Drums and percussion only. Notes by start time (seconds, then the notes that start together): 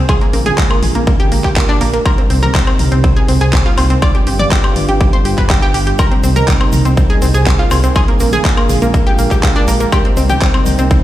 0.09 kick, closed hi-hat, high woodblock
0.21 closed hi-hat
0.33 open hi-hat, high conga
0.46 closed hi-hat, mid tom, high conga
0.58 kick, clap, closed hi-hat
0.71 high woodblock
0.83 open hi-hat, mid tom
0.95 closed hi-hat, high conga
1.07 kick, closed hi-hat
1.20 closed hi-hat, high conga
1.32 open hi-hat
1.44 kick, clap, closed hi-hat
1.56 kick, clap, closed hi-hat
1.81 open hi-hat
1.94 closed hi-hat
2.06 kick, closed hi-hat, high woodblock
2.18 closed hi-hat
2.30 open hi-hat, high conga
2.43 closed hi-hat, mid tom, high conga
2.55 kick, clap, closed hi-hat
2.67 high woodblock
2.79 open hi-hat, mid tom
2.92 closed hi-hat, high conga
3.04 kick, closed hi-hat
3.16 closed hi-hat, high conga
3.28 open hi-hat
3.41 closed hi-hat
3.53 kick, clap, closed hi-hat
3.78 open hi-hat, high woodblock
3.90 closed hi-hat
4.02 kick, closed hi-hat, high woodblock
4.15 closed hi-hat
4.27 open hi-hat, high conga
4.39 closed hi-hat, mid tom, high conga
4.51 kick, clap, closed hi-hat
4.64 high woodblock
4.76 open hi-hat, mid tom
4.89 closed hi-hat, high conga
5.01 kick, closed hi-hat
5.13 closed hi-hat, high conga
5.25 open hi-hat
5.38 kick, clap, closed hi-hat
5.50 kick, clap, closed hi-hat
5.74 open hi-hat
5.87 closed hi-hat
5.98 kick, closed hi-hat, high woodblock, shaker
6.12 closed hi-hat
6.24 open hi-hat, high conga, shaker
6.36 closed hi-hat, mid tom, high conga, shaker
6.48 kick, clap, closed hi-hat, shaker
6.61 high woodblock
6.72 open hi-hat, mid tom, shaker
6.85 closed hi-hat, high conga, shaker
6.97 kick, closed hi-hat, shaker
7.10 closed hi-hat, high conga
7.22 open hi-hat, shaker
7.34 closed hi-hat, shaker
7.46 kick, clap, closed hi-hat, shaker
7.71 open hi-hat, high woodblock, shaker
7.83 closed hi-hat, shaker
7.95 kick, closed hi-hat, high woodblock, shaker
8.08 closed hi-hat
8.20 open hi-hat, high conga, shaker
8.32 closed hi-hat, mid tom, high conga, shaker
8.45 kick, clap, closed hi-hat, shaker
8.57 high woodblock
8.69 open hi-hat, mid tom, shaker
8.82 closed hi-hat, high conga, shaker
8.94 kick, closed hi-hat, shaker
9.07 closed hi-hat, high conga
9.18 open hi-hat, shaker
9.31 kick, clap, closed hi-hat, shaker
9.43 kick, clap, closed hi-hat, shaker
9.68 open hi-hat, shaker
9.80 closed hi-hat, shaker
9.92 kick, closed hi-hat, high woodblock, shaker
10.05 closed hi-hat
10.17 open hi-hat, high conga, shaker
10.29 closed hi-hat, mid tom, high conga, shaker
10.41 kick, clap, closed hi-hat, shaker
10.54 high woodblock
10.66 open hi-hat, mid tom, shaker
10.78 closed hi-hat, high conga, shaker
10.91 kick, closed hi-hat, shaker